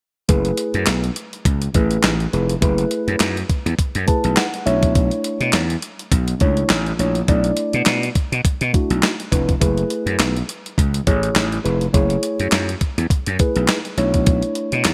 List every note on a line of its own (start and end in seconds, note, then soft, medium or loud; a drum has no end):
0.29 0.51 F#1 medium
0.29 1.04 A3 medium
0.29 1.04 E4 medium
0.29 1.04 G#4 medium
0.29 1.04 B4 medium
0.29 kick loud
0.29 closed hi-hat medium
0.45 closed hi-hat soft
0.57 closed hi-hat medium
0.74 0.84 F#2 medium
0.74 closed hi-hat soft
0.86 1.09 B1 medium
0.86 snare loud
0.86 clap medium
0.86 closed hi-hat medium
1.04 closed hi-hat soft
1.16 closed hi-hat medium
1.33 closed hi-hat soft
1.45 1.67 C#2 medium
1.45 kick loud
1.45 closed hi-hat loud
1.62 closed hi-hat medium
1.74 1.96 A1 medium
1.74 2.12 A3 medium
1.74 2.12 E4 medium
1.74 2.12 G#4 medium
1.74 2.12 B4 medium
1.74 kick loud
1.74 closed hi-hat medium
1.91 closed hi-hat soft
2.03 2.26 A1 medium
2.03 snare loud
2.03 clap medium
2.03 closed hi-hat medium
2.20 closed hi-hat soft
2.33 2.55 F1 medium
2.33 2.53 A3 medium
2.33 2.53 E4 medium
2.33 2.53 G#4 medium
2.33 2.53 B4 medium
2.33 closed hi-hat medium
2.49 closed hi-hat soft
2.61 2.84 F#1 medium
2.61 3.36 A3 medium
2.61 3.37 E4 medium
2.61 3.37 G#4 medium
2.61 3.37 B4 loud
2.61 kick loud
2.61 closed hi-hat medium
2.78 closed hi-hat soft
2.91 closed hi-hat medium
3.08 3.17 F#2 loud
3.08 closed hi-hat soft
3.20 3.42 F#2 medium
3.20 snare loud
3.20 clap medium
3.20 closed hi-hat loud
3.37 closed hi-hat soft
3.49 kick medium
3.49 closed hi-hat medium
3.66 3.75 E2 medium
3.66 closed hi-hat medium
3.78 muted slap bass stroke soft
3.78 kick medium
3.78 closed hi-hat medium
3.95 4.05 F#2 loud
3.95 closed hi-hat medium
4.07 4.45 A3 medium
4.07 4.45 E4 medium
4.07 4.45 G#4 medium
4.07 4.45 B4 medium
4.07 4.35 A5 medium
4.07 kick loud
4.07 closed hi-hat medium
4.24 4.34 B1 medium
4.24 closed hi-hat medium
4.37 4.64 F#5 medium
4.37 snare loud
4.37 clap medium
4.37 closed hi-hat medium
4.54 closed hi-hat soft
4.66 5.10 B1 medium
4.66 5.60 A3 medium
4.66 4.73 C#4 medium
4.66 5.60 E4 medium
4.66 5.60 C#5 loud
4.66 4.93 E5 medium
4.66 closed hi-hat medium
4.72 5.63 D4 medium
4.83 kick medium
4.83 closed hi-hat medium
4.95 kick loud
4.95 closed hi-hat medium
5.11 closed hi-hat soft
5.24 closed hi-hat medium
5.40 5.50 B2 medium
5.40 closed hi-hat medium
5.53 5.75 E2 medium
5.53 snare loud
5.53 clap medium
5.53 closed hi-hat medium
5.70 closed hi-hat soft
5.82 closed hi-hat medium
5.99 closed hi-hat medium
6.12 6.33 B1 medium
6.12 kick loud
6.12 closed hi-hat loud
6.28 closed hi-hat medium
6.40 6.63 C#2 medium
6.40 6.78 A3 medium
6.40 6.78 D4 medium
6.40 6.78 E4 medium
6.40 6.78 C#5 medium
6.40 kick medium
6.40 closed hi-hat medium
6.57 closed hi-hat soft
6.70 6.92 A1 medium
6.70 snare loud
6.70 clap medium
6.70 closed hi-hat medium
6.86 closed hi-hat soft
6.99 7.21 A#1 medium
6.99 7.19 A3 medium
6.99 7.19 D4 medium
6.99 7.19 E4 medium
6.99 7.19 C#5 medium
6.99 closed hi-hat medium
7.15 closed hi-hat soft
7.28 7.50 B1 medium
7.28 8.03 A3 medium
7.28 8.03 D4 medium
7.28 8.03 E4 medium
7.28 8.03 D5 medium
7.28 kick loud
7.28 closed hi-hat medium
7.44 closed hi-hat soft
7.57 closed hi-hat medium
7.73 7.83 B2 loud
7.73 closed hi-hat soft
7.86 8.08 B2 loud
7.86 snare loud
7.86 clap medium
7.86 closed hi-hat loud
8.03 closed hi-hat medium
8.15 kick medium
8.15 closed hi-hat medium
8.32 8.42 B2 medium
8.32 closed hi-hat medium
8.45 muted slap bass stroke soft
8.45 kick loud
8.45 closed hi-hat medium
8.61 8.71 B2 medium
8.61 closed hi-hat soft
8.73 9.11 A3 medium
8.73 9.11 D4 medium
8.73 9.11 E4 medium
8.73 9.11 F#4 medium
8.73 kick medium
8.73 closed hi-hat medium
8.90 9.00 B1 medium
8.90 closed hi-hat soft
9.03 snare loud
9.03 clap medium
9.03 closed hi-hat medium
9.20 closed hi-hat soft
9.31 9.54 F1 medium
9.31 9.51 A3 medium
9.31 9.51 D4 medium
9.31 9.51 E4 medium
9.31 9.51 B4 medium
9.31 kick medium
9.31 closed hi-hat medium
9.49 kick medium
9.49 closed hi-hat soft
9.61 9.83 F#1 medium
9.61 10.36 A3 medium
9.61 10.36 E4 medium
9.61 10.36 G#4 medium
9.61 10.36 B4 medium
9.61 kick loud
9.61 closed hi-hat medium
9.78 closed hi-hat soft
9.90 closed hi-hat medium
10.06 10.16 F#2 medium
10.06 closed hi-hat soft
10.19 10.41 B1 medium
10.19 snare loud
10.19 clap medium
10.19 closed hi-hat loud
10.37 closed hi-hat soft
10.49 closed hi-hat medium
10.66 closed hi-hat soft
10.78 10.99 C#2 medium
10.78 kick medium
10.78 closed hi-hat medium
10.94 closed hi-hat medium
11.06 11.29 A1 medium
11.06 11.44 A3 medium
11.06 11.44 E4 medium
11.06 11.44 G#4 medium
11.06 11.44 C#5 medium
11.06 kick medium
11.06 closed hi-hat medium
11.23 closed hi-hat soft
11.36 11.57 A1 medium
11.36 snare loud
11.36 clap medium
11.36 closed hi-hat medium
11.52 closed hi-hat soft
11.64 11.87 F1 medium
11.64 11.84 A3 medium
11.64 11.84 E4 medium
11.64 11.84 G#4 medium
11.64 11.84 B4 medium
11.64 closed hi-hat medium
11.81 closed hi-hat soft
11.93 12.16 F#1 loud
11.93 12.68 A3 medium
11.93 12.68 E4 medium
11.93 12.69 G#4 medium
11.93 12.69 C#5 medium
11.93 kick loud
11.93 closed hi-hat medium
12.10 closed hi-hat soft
12.23 closed hi-hat medium
12.40 12.49 F#2 medium
12.40 closed hi-hat soft
12.52 12.74 F#2 medium
12.52 snare loud
12.52 clap medium
12.52 closed hi-hat loud
12.69 closed hi-hat soft
12.81 kick medium
12.81 closed hi-hat medium
12.98 13.07 E2 medium
12.98 closed hi-hat medium
13.10 muted slap bass stroke soft
13.10 kick loud
13.10 closed hi-hat medium
13.26 13.37 F#2 loud
13.26 closed hi-hat medium
13.39 13.77 A3 medium
13.39 13.77 E4 medium
13.39 13.77 G#4 medium
13.39 13.77 B4 medium
13.39 kick medium
13.39 closed hi-hat medium
13.56 13.66 B1 medium
13.56 closed hi-hat soft
13.68 snare loud
13.68 clap medium
13.68 closed hi-hat medium
13.85 closed hi-hat soft
13.97 14.41 B1 medium
13.97 14.92 A3 medium
13.97 14.92 D4 medium
13.97 14.92 E4 medium
13.97 14.92 C#5 medium
13.97 closed hi-hat medium
14.14 kick medium
14.14 closed hi-hat soft
14.26 kick loud
14.26 closed hi-hat medium
14.42 closed hi-hat soft
14.55 closed hi-hat medium
14.72 14.82 B2 medium
14.72 closed hi-hat soft
14.85 14.94 E2 medium
14.85 snare loud
14.85 clap medium
14.85 closed hi-hat loud